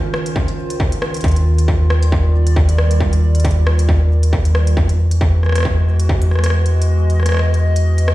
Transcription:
Already playing: C#2 D#3 C#4 F4 C5
0.14 cross-stick
0.26 closed hi-hat
0.36 kick
0.48 closed hi-hat
0.70 closed hi-hat
0.80 kick
0.92 closed hi-hat
1.02 cross-stick
1.14 closed hi-hat
1.17 closed hi-hat
1.21 closed hi-hat
1.24 D#2, kick, closed hi-hat
1.28 closed hi-hat
1.31 closed hi-hat
1.36 closed hi-hat
1.58 closed hi-hat
1.68 G3, kick
1.77 D5
1.90 cross-stick
2.03 closed hi-hat
2.12 kick
2.47 closed hi-hat
2.56 kick
2.69 closed hi-hat
2.78 cross-stick
2.91 closed hi-hat
3.00 kick
3.13 closed hi-hat
3.35 closed hi-hat
3.40 closed hi-hat
3.45 kick, closed hi-hat
3.51 closed hi-hat
3.67 cross-stick
3.79 closed hi-hat
3.89 kick
4.23 closed hi-hat
4.33 kick
4.45 closed hi-hat
4.55 cross-stick
4.67 closed hi-hat
4.77 E2 E3, kick
4.89 F#4, closed hi-hat
5.11 closed hi-hat
5.21 kick
5.29 G#3
5.43 cross-stick
5.46 cross-stick
5.49 cross-stick
5.52 cross-stick
5.55 cross-stick, closed hi-hat
5.58 cross-stick
5.60 cross-stick
5.63 kick, cross-stick
6.00 closed hi-hat
6.09 kick
6.22 closed hi-hat
6.31 cross-stick
6.35 D#5, cross-stick
6.39 cross-stick
6.44 cross-stick, closed hi-hat
6.46 cross-stick
6.50 cross-stick
6.66 closed hi-hat
6.82 closed hi-hat
7.10 closed hi-hat
7.20 cross-stick
7.23 cross-stick
7.26 cross-stick, closed hi-hat
7.29 cross-stick
7.32 cross-stick
7.34 cross-stick
7.37 cross-stick
7.39 cross-stick
7.54 closed hi-hat
7.76 closed hi-hat
7.98 closed hi-hat
8.08 cross-stick

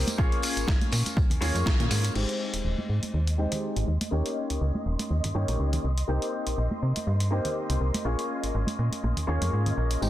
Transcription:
Already playing: A#3 C4 D#4 G4 C5
0.07 closed hi-hat, tambourine, high conga
0.18 A#1 A#3 C#4 F4 G#4 C#5, kick, tambourine
0.32 closed hi-hat
0.42 open hi-hat, tambourine
0.57 G#1, closed hi-hat, tambourine
0.67 G#1, kick, snare, tambourine
0.81 closed hi-hat, high conga
0.92 A#2, open hi-hat, tambourine
1.06 closed hi-hat, tambourine, high conga
1.16 A#1, kick, tambourine, high conga
1.30 D#2, closed hi-hat, low conga
1.41 D#2 A#3 C#4 F4 G#4 C#5, snare, open hi-hat, tambourine, low conga
1.54 F2, closed hi-hat, tambourine, high conga
1.66 A#1, kick, snare
1.80 A#2, closed hi-hat, low conga
1.90 G#2, open hi-hat, tambourine
2.03 closed hi-hat, tambourine
2.05 tambourine
2.14 G#1 G#3 C4 D#4 G4 C5 D#5 C6, crash
2.29 closed hi-hat
2.40 tambourine
2.53 D#1, closed hi-hat
2.64 D#1
2.78 high conga
2.89 G#2, tambourine
3.02 closed hi-hat, tambourine, high conga
3.14 D#2
3.27 closed hi-hat
3.38 G#3 C4 D#4 G4 C5
3.51 closed hi-hat, tambourine, low conga
3.76 G#1, closed hi-hat
3.88 D#2
4.00 closed hi-hat, tambourine, high conga
4.11 D#2 A#3 C#4 D#4 G4 C#5
4.26 closed hi-hat
4.36 tambourine
4.50 C#2, closed hi-hat, tambourine
4.61 C#2
4.75 high conga
4.86 D#1, tambourine
4.99 closed hi-hat, tambourine, high conga
5.10 D#2, tambourine, high conga
5.24 G2, closed hi-hat, low conga
5.34 G2 A#3 C#4 D#4 G4 C#5, tambourine, low conga
5.48 A#1, closed hi-hat, tambourine, high conga
5.59 C#2, tambourine
5.73 closed hi-hat, low conga
5.84 C2, tambourine
5.98 closed hi-hat
6.08 C2 A#3 C4 D#4 G4 C5
6.22 closed hi-hat
6.33 tambourine
6.47 A#1, closed hi-hat, tambourine
6.58 A#1
6.71 high conga
6.82 C3, tambourine
6.96 closed hi-hat, tambourine, high conga
7.07 G2, tambourine
7.20 closed hi-hat
7.31 A#3 C4 D#4 G4 C5, tambourine
7.45 closed hi-hat, tambourine, low conga
7.70 C2, closed hi-hat
7.81 C2, tambourine
7.94 closed hi-hat, tambourine, high conga
8.04 A#1 A#3 C#4 F4 G#4 C#5, tambourine
8.19 closed hi-hat
8.30 tambourine
8.43 G#1, closed hi-hat, tambourine
8.55 G#1
8.67 closed hi-hat, high conga
8.79 A#2, tambourine
8.92 closed hi-hat, tambourine, high conga
9.03 A#1, tambourine, high conga
9.16 D#2, closed hi-hat, low conga
9.27 D#2 A#3 C#4 F4 G#4 C#5, tambourine, low conga
9.41 F2, closed hi-hat, tambourine, high conga
9.52 G#2, tambourine
9.66 closed hi-hat, low conga
9.76 A#1, tambourine
9.91 closed hi-hat, tambourine
10.01 G#1 G#3 C4 D#4 G4 C5 D#5 C6, tambourine

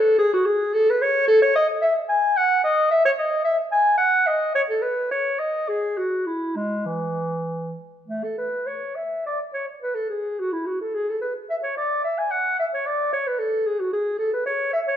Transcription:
Already playing: A4
0.18 G#4
0.33 F#4
0.46 G#4
0.74 A4
0.90 B4
1.02 C#5
1.28 A4
1.42 C#5
1.56 D#5
1.82 E5
2.09 G#5
2.37 F#5
2.64 D#5
2.91 E5
3.06 C#5
3.19 D#5
3.44 E5
3.72 G#5
3.98 F#5
4.27 D#5
4.55 C#5
4.70 A4
4.82 B4
5.11 C#5
5.39 D#5
5.68 G#4
5.98 F#4
6.27 E4
6.56 G#3
6.86 E3
8.07 A3
8.24 A4
8.38 B4
8.67 C#5
8.96 E5
9.26 D5
9.54 C#5
9.82 B4
9.95 A4
10.10 G#4
10.40 F#4
10.52 E4
10.66 F#4
10.81 A4
10.94 G#4
11.09 A4
11.21 B4
11.50 E5
11.63 C#5
11.77 D5
12.04 E5
12.18 G#5
12.31 F#5
12.59 E5
12.74 C#5
12.86 D5
13.13 C#5
13.27 B4
13.39 A4
13.66 G#4
13.80 F#4
13.93 G#4
14.19 A4
14.33 B4
14.46 C#5
14.73 E5
14.88 C#5

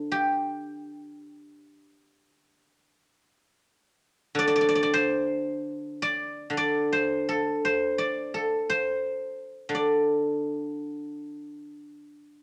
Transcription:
Already playing: D3 C5 D5
0.12 G4
4.35 D3 D5
4.48 D5
4.56 D5
4.61 D5
4.69 D5
4.75 D5
4.83 D5
4.94 C5
6.02 D5
6.50 D3
6.57 D5
6.92 C5
7.29 A4
7.65 C5
7.98 D5
8.34 A4
8.70 C5
9.69 D3
9.75 D5

